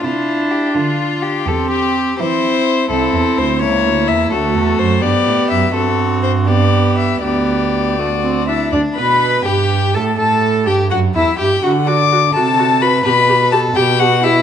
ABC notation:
X:1
M:6/8
L:1/8
Q:3/8=84
K:Cmix
V:1 name="Violin"
F2 G F2 G | A G2 c3 | [K:G] A2 c ^c2 e | A2 c d2 e |
A2 c d2 e | d4- d e | d b2 g2 a | a2 g f e g |
f d'2 a2 b | b2 a g f e |]
V:2 name="Violin"
E3 F3 | G3 E3 | [K:G] E3 E3 | F3 G3 |
F3 G3 | G3 F2 E | D B2 G2 A | A2 G F E G |
F d2 A2 B | B2 A G F E |]
V:3 name="Viola"
D6 | C3 C3 | [K:G] C3 ^A,3 | A,3 B,3 |
C3 B,3 | B,3 A, C D | D B2 G2 A | A2 G F E G |
F F F F F F | G G G G G G |]
V:4 name="Cello" clef=bass
C,3 D,3 | E,,3 E,3 | [K:G] C,, E,, D,, ^C,, D,, E,, | D,, E,, F,, G,, A,, F,, |
G,,6 | D,,4- D,, z | D,, B,,2 G,,2 A,, | A,,2 G,, F,, E,, G,, |
D,3 C,3 | B,,3 B,,3 |]